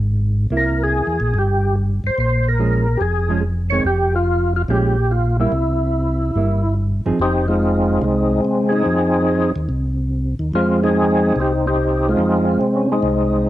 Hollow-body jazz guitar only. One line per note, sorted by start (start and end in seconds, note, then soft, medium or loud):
0.52 1.16 A#3 medium
0.52 1.16 E4 medium
2.59 2.85 F3 soft
2.59 2.85 G#3 medium
2.59 2.85 C#4 medium
3.29 3.42 F3 medium
3.29 3.42 G#3 medium
3.29 3.43 C#4 medium
3.72 3.84 D#3 medium
3.72 3.84 G#3 medium
3.72 3.84 C4 medium
4.69 4.94 F3 medium
4.69 4.94 G#3 medium
4.69 4.95 C#4 medium
5.40 5.51 G3 medium
5.40 5.52 A#3 medium
5.40 5.52 E4 medium
6.36 6.61 G3 soft
6.36 6.62 A#3 soft
6.36 6.62 E4 medium
7.06 7.18 F3 medium
7.06 7.18 C4 soft
7.06 7.18 D#4 medium
7.06 7.18 G#4 medium